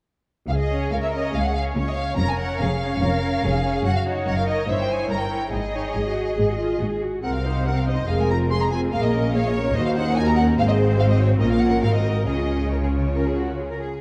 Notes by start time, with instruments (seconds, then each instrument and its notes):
0.49 cello section C#2, double bass section C#2, violin section G#4 F5
0.59 violin section D#5
0.71 viola section C#4 C#5
0.91 cello section C#2, double bass section C#2, violin section A#4 F5
1.03 violin section E5
1.13 viola section C#4 C#5, violin section D#5
1.34 cello section C#2, double bass section C#2, violin section G#4 F5
1.45 violin section F#5
1.55 viola section C#4 C#5, violin section F5
1.76 cello section C#2, double bass section C#2, violin section C#5
1.88 violin section D#5
1.96 viola section C#4 C#5, violin section F5
2.16 double bass section F1, cello section F2, viola section C#4 C#5, violin section A#4 A#5
2.29 violin section G#5
2.39 viola section C#4 C#5, violin section F#5
2.60 double bass section F1, cello section F2, violin section G#4 F5
2.82 viola section C#4 C#5
3.02 double bass section F1, cello section F2, violin section A#4
3.23 viola section C#4 C#5
3.44 double bass section F1, cello section F2, violin section G#4
3.64 viola section C#4 C#5
3.84 double bass section F#1, cello section F#2, violin section F#4 F#5
3.95 violin section F5
4.06 viola section D#4 C#5
4.26 double bass section F#1, cello section F#2, violin section A#4 F#5
4.37 violin section F5
4.47 viola section D#4 C#5, violin section D#5
4.68 double bass section G1, cello section G2, viola section E4 C#5, violin section C5 E5
4.80 violin section G5
4.88 viola section E4 C#5, violin section G#5
5.09 double bass section G1, cello section G2, violin section A#4 A#5
5.20 violin section G5
5.29 viola section E4 C#5
5.52 double bass section G#1, cello section G#2, violin section G#4 D#5
5.73 viola section D#4 C#5
5.94 double bass section G#1, cello section G#2, viola section G#4
6.05 viola section F#4
6.37 double bass section G#1, cello section G#2, viola section G#4
6.49 viola section F#4
6.58 viola section F4
6.80 double bass section G#1, cello section G#2, viola section F#4
6.91 viola section G#4
7.01 viola section F#4
7.23 double bass section C2, cello section C3, viola section C4 A#4, violin section F#5
7.36 violin section F5
7.44 viola section D#4 C5
7.65 viola section C4 A#4, violin section F#5
7.78 violin section F5
7.87 viola section D#4 C5, violin section D#5
8.08 double bass section F1, cello section F2, viola section G#3 G#4, violin section A#4 F5
8.21 violin section G#5
8.30 viola section C4 F4, violin section A#5
8.51 viola section G#3 G#4, violin section G#4 C6
8.62 violin section A#5
8.71 viola section C4 F4, violin section G#5
8.92 double bass section A#1, cello section A#2, viola section A#3 G#4, violin section A#4 F5
9.02 violin section D#5
9.14 viola section C#4 A#4
9.34 viola section A#3 G#4, violin section C#5 F5
9.45 violin section D#5
9.55 viola section C#4 A#4, violin section C#5
9.74 cello section D#2, double bass section D#2, viola section D#4 F#4, violin section C5 D#5
9.86 violin section F5
9.96 viola section C#4 D#4, violin section F#5
10.16 viola section D#4 F#4, violin section A#4 G#5
10.27 violin section A#5
10.37 viola section C#4 D#4, violin section F#5
10.59 double bass section G#1, cello section G#2, viola section C4 G#4, violin section C5 F5
10.68 violin section D#5
10.99 viola section F#4, violin section F5
11.10 violin section D#5
11.20 violin section C#5
11.40 double bass section A#1, cello section A#2, viola section C#4 F4, violin section A#4 D#5
11.51 violin section F5
11.61 violin section F#5
11.83 double bass section G#1, cello section G#2, viola section C4 F#4, violin section F5
11.95 violin section D#5
12.25 double bass section C#2, cello section C#3, viola section C#4 F4, violin section G#4 D#5
12.70 viola section C#4 F4, violin section A#4 C#5
12.84 violin section G#4
13.15 violin section A#4
13.27 violin section G#4
13.37 violin section F#4
13.59 violin section G#4
13.71 violin section A#4
13.80 violin section G#4